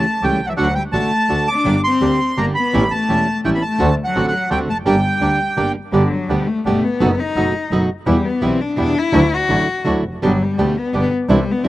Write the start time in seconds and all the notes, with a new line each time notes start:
Already playing: A3 A5
0.22 C#2 C#3 E3 G3 A3 C#4 G4 G5
0.40 C2
0.46 E3 F#3 E5 F#5
0.56 D2 D3 F#3 A3 D4 F#4 F#5
0.75 G3 G5
0.92 A1 D3 A3 D4 F#4 A5
1.28 D2 D3 A3 D4 F#4
1.48 D4 D6
1.64 G1 D3 G3 A#3 D4 G4
1.84 C4 C6
2.01 D2 D3 G3 A#3 D4 G4
2.37 G1 D3 G3 A#3 D4 G4 A#5
2.54 B3 B5
2.73 A1 E3 G3 A3 C#4 E4 G4
2.91 A3 A5
3.08 E1 E3 G3 A3 C#4 E4 G4
3.44 A1 E3 G3 A3 C#4 E4 G4 G5
3.55 B3 B5
3.62 A3 A5
3.79 D2 D3 A3 C4 D4 F#4
4.04 F#3 F#5
4.15 A1 D3 A3 C4 D4 F#4
4.28 F#3 F#5
4.49 D2 D3 G3 A3 C4 D4 F#4 G5
4.68 F1 A3 A5
4.85 G1 D3 G3 A#3 D4 G4 G5
5.20 D2 D3 G3 A#3 D4 G4
5.56 G1 D3 G3 A#3 D4 G4
5.92 G1 B2 D3 G3 B3 D4 G4
6.10 F#3
6.28 D2 B2 D3 G3 B3 D4 G4
6.47 A3
6.65 G1 B2 D3 G3 A3 B3 D4 G4
6.84 B3
7.00 F#1 B2 F#3 A3 B3 D#4 F#4 A4
7.19 D#4
7.35 F#1 B2 F#3 A3 B3 D#4 F#4 A4
7.71 F#1 B2 F#3 A3 B3 D#4 F#4 A4
8.06 E2 B2 E3 G3 B3 E4 G4
8.25 B3
8.41 B1 B2 E3 G3 B3 E4 G4
8.45 C4
8.60 D4
8.76 E2 B2 E3 G3 B3 D4 E4 G4
8.99 E4
9.12 D2 D3 F#3 A3 D4 E4 F#4
9.34 F#4
9.49 A1 D3 F#3 A3 D4 E4 F#4
9.85 D2 D3 F#3 A3 D4 E4 F#4
10.04 F1
10.22 G1 B2 D3 F#3 G3 B3 D4 G4
10.43 G3
10.57 D2 B2 D3 G3 A3 B3 D4 G4
10.79 B3
10.93 G1 B2 D3 G3 B3 D4 G4
10.98 B3
11.29 C2 C3 E3 G3 C4 D4 E4
11.51 B3
11.63 C3 E3 G3 C4 D4 E4